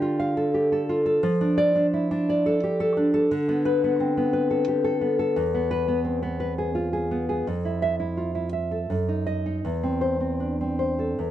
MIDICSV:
0, 0, Header, 1, 2, 480
1, 0, Start_track
1, 0, Tempo, 691244
1, 853, Time_signature, 3, 2, 24, 8
1, 4211, Tempo, 702576
1, 5651, Tempo, 736196
1, 6611, Tempo, 765306
1, 7654, End_track
2, 0, Start_track
2, 0, Title_t, "Nylon-string guitar"
2, 0, Program_c, 0, 24
2, 0, Note_on_c, 0, 50, 92
2, 0, Note_on_c, 0, 67, 61
2, 13, Note_on_c, 0, 65, 68
2, 135, Note_on_c, 0, 77, 63
2, 255, Note_off_c, 0, 67, 0
2, 257, Note_on_c, 0, 69, 68
2, 374, Note_off_c, 0, 65, 0
2, 377, Note_on_c, 0, 67, 62
2, 494, Note_off_c, 0, 69, 0
2, 502, Note_on_c, 0, 69, 72
2, 617, Note_off_c, 0, 67, 0
2, 620, Note_on_c, 0, 65, 72
2, 726, Note_off_c, 0, 69, 0
2, 734, Note_on_c, 0, 69, 72
2, 827, Note_off_c, 0, 50, 0
2, 853, Note_off_c, 0, 69, 0
2, 854, Note_off_c, 0, 77, 0
2, 854, Note_on_c, 0, 53, 95
2, 856, Note_off_c, 0, 65, 0
2, 978, Note_on_c, 0, 62, 75
2, 1095, Note_on_c, 0, 74, 97
2, 1209, Note_off_c, 0, 62, 0
2, 1218, Note_on_c, 0, 62, 74
2, 1289, Note_off_c, 0, 74, 0
2, 1344, Note_on_c, 0, 64, 58
2, 1457, Note_off_c, 0, 62, 0
2, 1465, Note_on_c, 0, 62, 73
2, 1594, Note_on_c, 0, 74, 71
2, 1709, Note_on_c, 0, 69, 69
2, 1827, Note_off_c, 0, 62, 0
2, 1830, Note_on_c, 0, 67, 66
2, 1937, Note_off_c, 0, 69, 0
2, 1945, Note_on_c, 0, 69, 76
2, 2062, Note_on_c, 0, 62, 66
2, 2068, Note_off_c, 0, 64, 0
2, 2171, Note_off_c, 0, 69, 0
2, 2179, Note_on_c, 0, 69, 78
2, 2274, Note_off_c, 0, 53, 0
2, 2297, Note_off_c, 0, 67, 0
2, 2300, Note_off_c, 0, 62, 0
2, 2300, Note_off_c, 0, 69, 0
2, 2300, Note_on_c, 0, 50, 100
2, 2306, Note_off_c, 0, 74, 0
2, 2420, Note_on_c, 0, 59, 80
2, 2537, Note_on_c, 0, 71, 95
2, 2658, Note_off_c, 0, 59, 0
2, 2666, Note_on_c, 0, 59, 74
2, 2730, Note_off_c, 0, 71, 0
2, 2777, Note_on_c, 0, 60, 60
2, 2890, Note_off_c, 0, 59, 0
2, 2898, Note_on_c, 0, 59, 69
2, 3007, Note_on_c, 0, 71, 71
2, 3129, Note_on_c, 0, 69, 66
2, 3247, Note_off_c, 0, 59, 0
2, 3250, Note_on_c, 0, 67, 66
2, 3355, Note_off_c, 0, 69, 0
2, 3364, Note_on_c, 0, 69, 73
2, 3478, Note_off_c, 0, 67, 0
2, 3481, Note_on_c, 0, 59, 63
2, 3493, Note_off_c, 0, 60, 0
2, 3597, Note_off_c, 0, 69, 0
2, 3605, Note_on_c, 0, 69, 73
2, 3708, Note_off_c, 0, 50, 0
2, 3724, Note_on_c, 0, 40, 89
2, 3730, Note_off_c, 0, 59, 0
2, 3731, Note_off_c, 0, 69, 0
2, 3733, Note_off_c, 0, 71, 0
2, 3850, Note_on_c, 0, 59, 70
2, 3963, Note_on_c, 0, 71, 89
2, 4074, Note_off_c, 0, 59, 0
2, 4082, Note_on_c, 0, 59, 65
2, 4158, Note_off_c, 0, 71, 0
2, 4198, Note_on_c, 0, 60, 56
2, 4312, Note_off_c, 0, 59, 0
2, 4320, Note_on_c, 0, 59, 62
2, 4440, Note_on_c, 0, 71, 64
2, 4563, Note_off_c, 0, 71, 0
2, 4565, Note_on_c, 0, 68, 60
2, 4676, Note_off_c, 0, 59, 0
2, 4679, Note_on_c, 0, 65, 61
2, 4794, Note_off_c, 0, 68, 0
2, 4802, Note_on_c, 0, 68, 62
2, 4924, Note_off_c, 0, 60, 0
2, 4926, Note_on_c, 0, 59, 55
2, 5041, Note_off_c, 0, 68, 0
2, 5049, Note_on_c, 0, 68, 63
2, 5135, Note_off_c, 0, 40, 0
2, 5164, Note_off_c, 0, 65, 0
2, 5167, Note_off_c, 0, 59, 0
2, 5169, Note_off_c, 0, 68, 0
2, 5174, Note_on_c, 0, 41, 75
2, 5295, Note_on_c, 0, 64, 59
2, 5412, Note_on_c, 0, 76, 74
2, 5523, Note_off_c, 0, 64, 0
2, 5528, Note_off_c, 0, 76, 0
2, 5531, Note_on_c, 0, 64, 57
2, 5652, Note_on_c, 0, 65, 46
2, 5758, Note_off_c, 0, 64, 0
2, 5766, Note_on_c, 0, 64, 56
2, 5881, Note_off_c, 0, 64, 0
2, 5884, Note_on_c, 0, 76, 46
2, 6004, Note_on_c, 0, 69, 53
2, 6097, Note_off_c, 0, 41, 0
2, 6121, Note_off_c, 0, 76, 0
2, 6122, Note_off_c, 0, 65, 0
2, 6122, Note_off_c, 0, 69, 0
2, 6125, Note_on_c, 0, 42, 72
2, 6247, Note_on_c, 0, 63, 53
2, 6364, Note_on_c, 0, 75, 70
2, 6482, Note_off_c, 0, 63, 0
2, 6490, Note_on_c, 0, 63, 51
2, 6561, Note_off_c, 0, 75, 0
2, 6598, Note_off_c, 0, 42, 0
2, 6611, Note_off_c, 0, 63, 0
2, 6613, Note_on_c, 0, 40, 66
2, 6730, Note_on_c, 0, 60, 54
2, 6841, Note_on_c, 0, 72, 63
2, 6955, Note_off_c, 0, 60, 0
2, 6963, Note_on_c, 0, 60, 45
2, 7032, Note_off_c, 0, 72, 0
2, 7085, Note_on_c, 0, 62, 44
2, 7208, Note_off_c, 0, 60, 0
2, 7215, Note_on_c, 0, 60, 43
2, 7330, Note_on_c, 0, 72, 43
2, 7454, Note_on_c, 0, 69, 49
2, 7546, Note_off_c, 0, 40, 0
2, 7572, Note_off_c, 0, 62, 0
2, 7572, Note_off_c, 0, 72, 0
2, 7573, Note_off_c, 0, 69, 0
2, 7576, Note_off_c, 0, 60, 0
2, 7579, Note_on_c, 0, 40, 61
2, 7654, Note_off_c, 0, 40, 0
2, 7654, End_track
0, 0, End_of_file